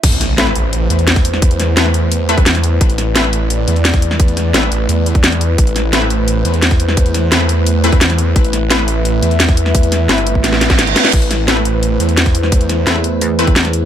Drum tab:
CC |x---------------|----------------|----------------|----------------|
HH |xxx-x-x-x-xxxxx-|xxx-x-x-x-xxxxx-|xxx-x-x-x-xxxxx-|xxx-x-x-x-xxxxx-|
SD |--o-oo------o--o|--o-oo------oo--|--o-oo------o--o|--o-oo------oo--|
BD |o------------o--|o----------o----|o------------o--|o----------o----|

CC |----------------|----------------|----------------|----------------|
HH |xxx-x-x-x-xxxxx-|xxx-x-x-x-xxxxx-|xxx-x-x-x-xxxxx-|xxx-xxx-x-xxxxx-|
SD |--o-oo------o--o|--o-oo------oo--|--o-oo------o--o|--o-oo--ooooo-oo|
BD |o------------o--|o----------o----|o------------o--|o------o---o----|

CC |x---------------|----------------|
HH |xxx-x-x-x-xxxxx-|xxx-x-x-x-xxxxx-|
SD |--o-oo------o--o|--o-oo------oo--|
BD |o------------o--|o----------o----|